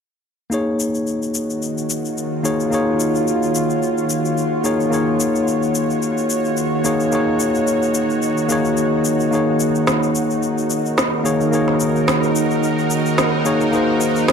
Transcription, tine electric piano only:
0.50 A#3 D#4 G#4
0.54 C#5
2.43 A#3 D#4 G#4 C#5
2.70 A#3 D#4 G#4
2.74 C#5
4.64 A#3 D#4 G#4 C#5
4.90 A#3 D#4 G#4
4.94 C#5
6.84 A#3 D#4 G#4 C#5
7.11 A#3 D#4 G#4
7.15 C#5
8.48 A#3 D#4 G#4 C#5
9.31 A#3 D#4 G#4
9.35 C#5
11.24 A#3 D#4 G#4 C#5
11.51 A#3 D#4 G#4
11.55 C#5
13.45 A#3 D#4 G#4 C#5
13.71 A#3 D#4 G#4
13.75 C5

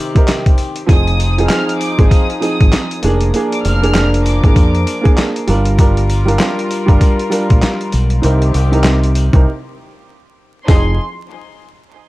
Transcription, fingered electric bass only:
0.89 F1
1.99 G#1
2.61 G#1
3.04 F1
3.65 F1
4.44 G#1
4.56 F2
5.48 G1
6.89 G1
7.51 A#1
7.94 B1
8.24 C2
8.55 C2
9.34 C2
10.69 F1

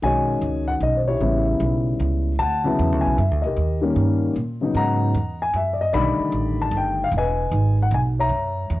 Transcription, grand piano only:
0.02 D#3 G#3 C#4 F#4 C#5 G#5
0.07 D#5
0.68 F#5
0.83 D#5
0.97 C5
1.08 E4 G4 C#5
1.21 C#3 G3 B3 E4
2.39 F#5 A5
2.64 C#3 F#3 B3 E4
3.01 G#5
3.17 E5
3.42 A#4 D#5
3.46 G4
3.81 D#3 G3 A#3 C#4
4.61 C#3 F#3 B3 D#4
4.77 D#5 F#5 A#5
5.42 G#5
5.56 E5
5.73 D5
5.81 D#5
5.93 D3 D#3 G3 A3 D5 D#5 B5
6.62 A5
6.77 G5
7.04 F5
7.17 B4 D#5 G#5
7.82 F#5
7.94 G#5
8.19 C#5 E5 A#5

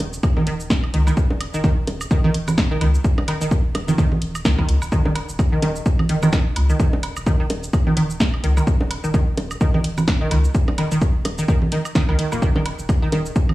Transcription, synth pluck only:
0.37 D#3
0.47 D#3
0.94 D#3
1.07 D#3
1.54 D#3
1.64 D#3
2.11 D#3
2.24 D#3
2.71 D#3
2.81 D#3
3.28 D#3
3.41 D#3
3.88 D#3
3.98 D#3
4.45 D#3
4.59 D#3
4.92 D#3
5.05 D#3
5.52 D#3
5.62 D#3
6.09 D#3
6.23 D#3
6.70 D#3
6.80 D#3
7.27 D#3
7.40 D#3
7.87 D#3
7.97 D#3
8.44 D#3
8.57 D#3
9.04 D#3
9.14 D#3
9.61 D#3
9.74 D#3
10.21 D#3
10.31 D#3
10.78 D#3
10.91 D#3
11.38 D#3
11.48 D#3
11.72 D#3
11.95 D#3
12.09 D#3
12.19 D#3
12.32 A#2
12.42 D#3
12.56 D#3
13.02 D#3
13.13 D#3

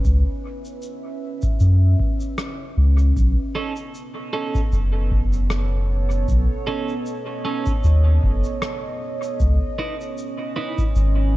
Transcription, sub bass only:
0.05 C#2
1.60 F#2
2.77 C#2
3.16 B1
4.72 F#1
6.28 B1
7.84 D#2
8.23 F#1
9.40 C#2
10.95 G#1

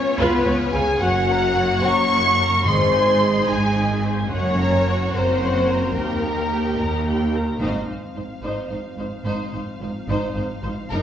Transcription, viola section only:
0.18 F4 B4
0.46 G#4 C#5
0.74 B4 F5
1.02 C#5 F#5
1.30 A#4 A#5
1.57 C#5 F#5
1.84 A#4 A#5
2.12 C#5 F#5
2.40 A#4 A#5
2.67 G#4 D#5
2.94 C5 G#5
3.21 G#4 D#5
3.49 C5 G#5
3.76 G#4 D#5
4.03 C5 G#5
4.31 C#5 F#5
4.59 A#4 A#5
4.87 C#5 F#5
5.16 A#4 A#5
5.42 C#5 F#5
5.69 A#4 A#5
5.96 G4 G5
6.26 A#4 A#5
6.53 G4 G5
6.80 A#4 A#5
7.08 G4 G5
7.34 A#4 A#5
7.61 D#4
7.89 D#4
8.16 D#4
8.44 D#4
8.71 D#4
8.99 D#4
9.27 D#4
9.54 D#4
9.82 D#4
10.09 D#4
10.37 D#4
10.66 D#4
10.93 D#4

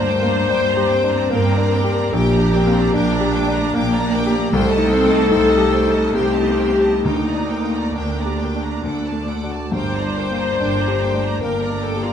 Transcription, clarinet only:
Already playing: C5
1.31 A#4
2.14 G4
2.94 D4
4.54 A4
6.16 G4
7.05 D#4
7.95 D4
9.75 C5
11.41 A#4
11.82 A4
12.04 F4

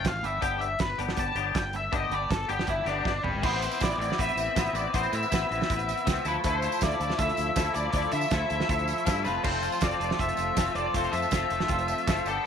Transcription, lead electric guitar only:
0.08 F5
0.25 E5
0.42 G5
0.61 E5
0.80 B4
1.20 A5
1.57 G5
1.76 E5
1.96 D#5
2.14 D5
2.31 A4
2.49 G4
2.70 E4
2.87 D4
3.07 D4
3.23 B4
3.44 C5
3.83 D5
4.00 D5
4.20 E5
4.76 D5
4.94 C5
5.15 E5
6.28 B4
6.47 C5
6.83 D5
7.19 E5
7.75 D5
7.91 D5
8.12 E5
9.25 B4
9.44 C5
9.82 D5
10.20 E5
10.76 D5
10.95 C5
11.12 E5
12.28 A4

